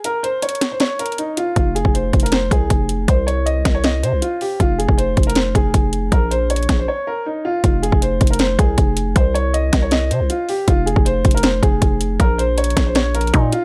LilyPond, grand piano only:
\new Staff \with { instrumentName = "Grand piano" } { \time 4/4 \key f \minor \tempo 4 = 158 bes'8 c''8 des''8. c''16 des''8 bes'8 ees'8 f'8 | f'8 aes'8 c''8. bes'16 c''8 aes'4. | c''8 des''8 ees''8. des''16 ees''8 c''8 f'8 g'8 | f'8 aes'8 c''8. bes'16 c''8 aes'4. |
bes'8 c''8 des''8. c''16 des''8 bes'8 ees'8 f'8 | f'8 aes'8 c''8. bes'16 c''8 aes'4. | c''8 des''8 ees''8. des''16 ees''8 c''8 f'8 g'8 | f'8 aes'8 c''8. bes'16 c''8 aes'4. |
bes'8 c''8 des''8. c''16 des''8 bes'8 ees'8 f'8 | }